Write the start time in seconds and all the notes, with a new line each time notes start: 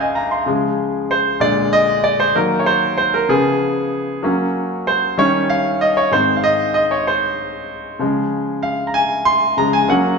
Already playing: C#2 C#3 C#4 F4 G#4 C5 F5
0.00 D#5 G#5
0.15 F5 A#5
0.31 F5 C6
0.46 C#3 F3 G#3
1.11 C5
1.40 A#2 D3 G#3 D5
1.73 D#5
2.04 D5
2.20 C5
2.35 D#3 F#3 A#3 A#4
2.59 C#5
2.66 C5
2.98 C5
3.14 A#4
3.29 C#3 F3 B3 G#4
4.23 F#3 A#3 C#4
4.87 C5
5.18 D#3 G3 C#4 C#5
5.50 F5
5.81 D#5
5.97 C#5
6.11 G#2 D#3 C4 C5
6.36 F5
6.44 D#5
6.74 D#5
6.91 C#5
7.07 C5
7.99 C#3 F3 G#3
8.63 F5
8.87 A#5
8.94 G#5
9.25 C6
9.57 C#3 F3 G#3 A#5
9.73 G#5
9.88 F#3 A#3 C#4 F#5